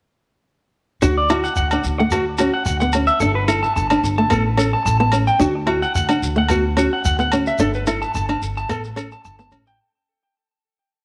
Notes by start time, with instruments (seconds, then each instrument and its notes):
1.02 upright bass D2, nylon-string guitar D4, clean electric guitar F#4, shekere
1.18 clean electric guitar D5
1.30 nylon-string guitar E4, clean electric guitar F#4, low agogo, shekere
1.44 clean electric guitar F#5, shekere
1.56 upright bass D2, clean electric guitar F#5, shekere
1.71 nylon-string guitar D4, clean electric guitar F#5, low agogo, shekere
1.84 upright bass D2, shekere
1.99 nylon-string guitar A3, clean electric guitar F#5
2.11 clean electric guitar F#4, muted nylon-string guitar stroke, low agogo, shekere
2.38 nylon-string guitar C#4, clean electric guitar F#4, low agogo, shekere
2.54 clean electric guitar F#5
2.66 upright bass D2, clean electric guitar F#5, shekere
2.80 nylon-string guitar B3, clean electric guitar F#5, shekere
2.93 nylon-string guitar C#4, low agogo, shekere
3.07 clean electric guitar E5, shekere
3.20 upright bass G1, nylon-string guitar D4, clean electric guitar A4, shekere
3.35 clean electric guitar B4
3.48 nylon-string guitar E4, clean electric guitar A4, low agogo, shekere
3.63 clean electric guitar A5, shekere
3.76 upright bass G1, clean electric guitar A5, shekere
3.90 nylon-string guitar D4, clean electric guitar A5, low agogo, shekere
4.03 upright bass G1, shekere
4.18 nylon-string guitar A3, clean electric guitar A5
4.30 upright bass A1, nylon-string guitar B3, clean electric guitar A4, low agogo, shekere
4.57 nylon-string guitar C#4, clean electric guitar A4, low agogo, shekere
4.73 clean electric guitar A5
4.85 upright bass A1, clean electric guitar A5, shekere
5.00 nylon-string guitar B3, clean electric guitar A5
5.12 nylon-string guitar C#4, low agogo, shekere
5.27 clean electric guitar G5, shekere
5.39 upright bass D2, nylon-string guitar D4, clean electric guitar F#4, shekere
5.55 muted clean electric guitar stroke
5.67 nylon-string guitar E4, clean electric guitar F#4, low agogo
5.82 clean electric guitar F#5, shekere
5.95 upright bass D2, clean electric guitar F#5, shekere
6.09 nylon-string guitar D4, clean electric guitar F#5, low agogo, shekere
6.22 upright bass D2, shekere
6.36 nylon-string guitar A3, clean electric guitar F#5
6.49 nylon-string guitar B3, clean electric guitar F#4, low agogo, shekere
6.77 nylon-string guitar C#4, clean electric guitar F#4, low agogo, shekere
6.93 clean electric guitar F#5
7.05 upright bass D2, clean electric guitar F#5, shekere
7.19 nylon-string guitar B3, clean electric guitar F#5, shekere
7.32 nylon-string guitar C#4, low agogo, shekere
7.47 clean electric guitar E5, shekere
7.59 upright bass G1, nylon-string guitar D4, clean electric guitar A4, shekere
7.74 clean electric guitar B4, shekere
7.87 nylon-string guitar E4, clean electric guitar A4, low agogo, shekere
8.02 clean electric guitar A5, shekere
8.14 upright bass G1, clean electric guitar A5, shekere
8.29 nylon-string guitar D4, clean electric guitar A5, low agogo
8.42 upright bass G1, shekere
8.57 clean electric guitar A5, shekere
8.69 upright bass A1, nylon-string guitar B3, clean electric guitar A4, low agogo, shekere
8.84 shekere
8.96 nylon-string guitar C#4, clean electric guitar A4, low agogo, shekere
9.12 clean electric guitar A5, shekere
9.25 upright bass G1, clean electric guitar A5, shekere
9.39 nylon-string guitar B3, clean electric guitar A5, shekere
9.51 upright bass A1, nylon-string guitar C#4, low agogo, shekere
9.67 clean electric guitar G5, shekere